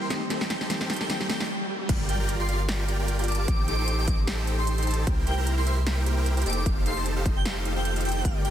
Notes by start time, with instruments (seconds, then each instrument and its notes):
Already playing: ambient pad G3, riser
0.01 supersaw synth E4 G4 A#4 C5 G5, digital synth lead C6
0.09 synth pluck D#3 A3 C4 G4, ambient pad D#4 F4 A4, supersaw synth D#4 G4 A4 C5 D#5, digital synth lead C6, snare, closed hi-hat
0.28 synth pluck D#3 A3 C4, supersaw synth D#4 G4 A4 C5 G5, snare, closed hi-hat
0.32 synth pluck G4
0.41 snare
0.50 supersaw synth D#4 G4 A4 C5 G5, digital synth lead G5, snare, closed hi-hat
0.61 supersaw synth D#4 G4 A4 C5 A5, digital synth lead G5, snare
0.68 synth pluck D#3 A3 C4, supersaw synth D#4 G4 A4 C5 G5, snare, closed hi-hat
0.72 synth pluck G4
0.81 snare
0.90 supersaw synth D#4 G4 A4 C5 G5, digital synth lead G5, snare, closed hi-hat
0.93 closed hi-hat
0.96 closed hi-hat
1.01 supersaw synth D#4 G4 A4 C5 A5, digital synth lead G5, snare
1.08 synth pluck D#3 A3 C4 G4, supersaw synth D#4 G4 A4 C5 G5, digital synth lead G5, snare, closed hi-hat, swell
1.21 digital synth lead G5, snare
1.28 synth pluck D#3 A3 C4 G4, supersaw synth D#4 G4 A4 C5 G5, digital synth lead G5, snare, closed hi-hat
1.40 digital synth lead G5, snare
1.89 sub bass G1, ambient pad D3 A#3 F4 G4, supersaw synth F4 G4 A#4 D5 G5, kick, closed hi-hat, crash, impact
2.09 supersaw synth F4 G4 A#4 D5 G5, digital synth lead G5, closed hi-hat
2.20 supersaw synth F4 G4 A#4 D5 A#5, digital synth lead G5
2.29 closed hi-hat
2.40 supersaw synth F4 G4 A#4 D5 G5, digital synth lead C6
2.49 supersaw synth F4 G4 A#4 D5 F5, digital synth lead C6, closed hi-hat
2.69 supersaw synth F4 G4 A#4 D5 G5, snare, closed hi-hat
2.88 supersaw synth F4 G4 A#4 D5 G5, closed hi-hat
2.99 supersaw synth F4 G4 A#4 D5 G5
3.08 closed hi-hat
3.19 supersaw synth F4 G4 A#4 D5 G5, closed hi-hat
3.24 closed hi-hat
3.28 supersaw synth F4 G4 A#4 D5 A5, digital synth lead D6, closed hi-hat
3.32 closed hi-hat
3.35 closed hi-hat
3.39 digital synth lead D6
3.48 sub bass A1, ambient pad C3 A3 D#4, supersaw synth D#4 G4 A4 C5 G5, digital synth lead D6, kick, closed hi-hat
3.68 supersaw synth D#4 G4 A4 C5 G5, digital synth lead D6, closed hi-hat
3.79 supersaw synth D#4 G4 A4 C5 C6
3.88 closed hi-hat
3.99 supersaw synth D#4 G4 A4 C5 G5, digital synth lead D6
4.08 supersaw synth D#4 G4 A4 C5 D#5, digital synth lead D6, kick, closed hi-hat
4.27 supersaw synth D#4 G4 A4 C5 G5, snare, closed hi-hat
4.47 supersaw synth D#4 G4 A4 C5 G5, closed hi-hat
4.58 supersaw synth D#4 G4 A4 C5 G5, digital synth lead C6
4.67 closed hi-hat
4.78 supersaw synth D#4 G4 A4 C5 G5, closed hi-hat
4.83 closed hi-hat
4.87 supersaw synth D#4 G4 A4 C5 A5, closed hi-hat
4.91 closed hi-hat
4.94 closed hi-hat
5.07 sub bass C2, ambient pad A#3 E4 G4, supersaw synth G4 A#4 C5 G5, kick, closed hi-hat
5.27 supersaw synth E4 G4 A#4 C5 G5, digital synth lead G5, closed hi-hat
5.38 supersaw synth E4 G4 A#4 C5 A#5, digital synth lead G5
5.47 closed hi-hat
5.58 supersaw synth E4 G4 A#4 C5 G5, digital synth lead C6
5.67 supersaw synth E4 G4 A#4 C5 E5, digital synth lead C6, closed hi-hat
5.86 supersaw synth E4 G4 A#4 C5 G5, snare, closed hi-hat
6.06 supersaw synth E4 G4 A#4 C5 G5, closed hi-hat
6.17 supersaw synth E4 G4 A#4 C5 G5
6.26 closed hi-hat
6.37 supersaw synth E4 G4 A#4 C5 G5, closed hi-hat
6.42 closed hi-hat
6.46 sub bass F1, ambient pad D#3 A3 F4, supersaw synth D#4 G4 A4 C5 G5, digital synth lead D6, closed hi-hat
6.50 closed hi-hat
6.53 closed hi-hat
6.57 digital synth lead D6
6.66 supersaw synth D#4 G4 A4 C5 F5, kick, closed hi-hat
6.86 supersaw synth D#4 G4 A4 C5 F5, digital synth lead C6, closed hi-hat
6.97 supersaw synth D#4 G4 A4 C5 A5
7.06 closed hi-hat
7.16 supersaw synth D#4 G4 A4 C5 F5
7.26 supersaw synth D#4, kick, closed hi-hat
7.37 digital synth lead G5
7.45 supersaw synth D#4 G4 A4 C5 F5, digital synth lead G5, snare, closed hi-hat
7.65 supersaw synth D#4 G4 A4 C5 F5, closed hi-hat
7.76 supersaw synth D#4 G4 A4 C5 F5, digital synth lead G5
7.85 digital synth lead G5, closed hi-hat
7.96 supersaw synth D#4 G4 A4 C5 F5, closed hi-hat
8.01 closed hi-hat
8.05 supersaw synth D#4 G4 A4 C5 G5, digital synth lead G5, closed hi-hat
8.09 closed hi-hat
8.12 closed hi-hat
8.25 sub bass G1, ambient pad D3 A#3, kick, closed hi-hat
8.45 supersaw synth F4 G4 A#4 D5 G5, digital synth lead G5, closed hi-hat